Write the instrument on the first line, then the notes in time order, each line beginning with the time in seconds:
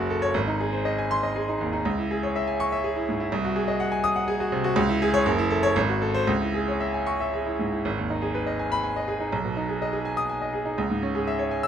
grand piano
Already playing: F#1 F#4
0.10 A4
0.22 C#5
0.34 G#1
0.47 D#4
0.60 G#4
0.73 C5
0.85 D#5
0.99 G#5
1.11 C6
1.23 D#5
1.36 G#4
1.48 D#4
1.61 D#2
1.73 D#4
1.85 C#2
1.98 E4
2.11 G#4
2.23 C#5
2.36 E5
2.47 G#5
2.60 C#6
2.72 E5
2.84 G#4
2.96 E4
3.09 G#2
3.20 E4
3.32 C2
3.45 F#4
3.56 G#4
3.68 D#5
3.80 F#5
3.92 G#5
4.04 D#6
4.16 F#5
4.28 G#4
4.40 F#4
4.52 C3
4.64 F#4
4.76 C#2
4.89 E4
5.02 G#4
5.14 C#5
5.26 F#1
5.38 E4
5.50 A4
5.63 C#5
5.76 G#1
5.89 F#4
6.02 A4
6.14 C5
6.27 C#2
6.42 E4
6.54 G#4
6.68 C#5
6.80 E5
6.94 G#5
7.07 C#6
7.20 E5
7.33 G#4
7.46 E4
7.59 G#2
7.73 E4
7.85 G#1
7.98 D#2
8.10 D#4
8.22 G#4
8.35 B4
8.47 D#5
8.59 G#5
8.72 B5
8.84 G#5
8.96 D#5
9.08 G#4
9.20 D#4
9.32 B1
9.45 B2
9.57 D#4
9.69 G#4
9.82 D#5
9.93 G#4
10.05 G#5
10.17 D#6
10.29 G#5
10.42 D#5
10.53 G#4
10.65 D#4
10.78 C#2
10.90 G#2
11.03 C#4
11.15 G#4
11.27 E5
11.39 C#5
11.51 G#5
11.63 E6